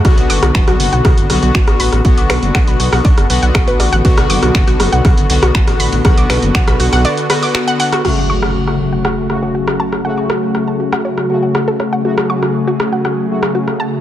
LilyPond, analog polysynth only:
\new Staff \with { instrumentName = "Analog polysynth" } { \time 4/4 \key fis \minor \tempo 4 = 120 <d b fis'>2~ <d b fis'>8 <d b fis'>4. | <d b fis'>2~ <d b fis'>8 <d b fis'>4. | <d b fis'>2~ <d b fis'>8 <d b fis'>4. | <d b fis'>2~ <d b fis'>8 <d b fis'>4. |
<cis a fis'>2~ <cis a fis'>8 <cis a fis'>4. | <cis a fis'>2~ <cis a fis'>8 <cis a fis'>4. | <cis a fis'>2~ <cis a fis'>8 <cis a fis'>4. | }